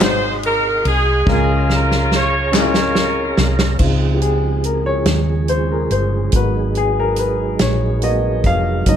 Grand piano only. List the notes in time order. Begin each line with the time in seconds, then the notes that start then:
Already playing: G#2 G#3 C5
0.00 D#4 F#4 C#5
0.07 D#5
1.26 C#3 G#3 C#4 F4 A#4
2.52 G#3 C#4 E4 G#4
2.60 F4
3.79 C4 D#4 F4
4.14 G4
4.22 G#4
4.65 A#4
4.86 C#5
5.49 C5
5.72 A#4
5.92 C5
6.34 B3 F#4 A#4 B4
6.77 G#4
7.00 A#4
7.19 B4
7.61 C#5
8.02 A#3 B3 F#4 D#5
8.46 F5
8.88 G#3 A#3 D#4 D#5